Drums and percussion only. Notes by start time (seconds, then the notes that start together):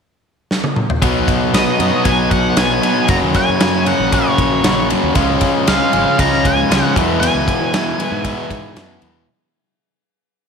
0.51 snare
0.64 high tom
0.76 mid tom
0.90 floor tom
1.02 kick, ride
1.28 kick, ride
1.54 snare, ride
1.80 ride
2.05 kick, ride
2.31 kick, ride
2.57 snare, ride
2.83 ride
3.08 kick, ride
3.34 kick, snare, ride
3.60 snare, ride
3.86 ride
4.12 kick, ride
4.38 kick, ride
4.64 snare, ride
4.90 ride
5.15 kick, ride
5.41 kick, snare, ride
5.67 snare, ride
5.93 ride
6.19 kick, ride
6.33 snare
6.45 kick, ride
6.71 snare, ride
6.96 kick, ride
7.23 ride
7.48 kick, ride
7.74 snare, ride
8.00 ride
8.25 kick, ride
8.50 kick, ride
8.76 snare, ride
9.02 ride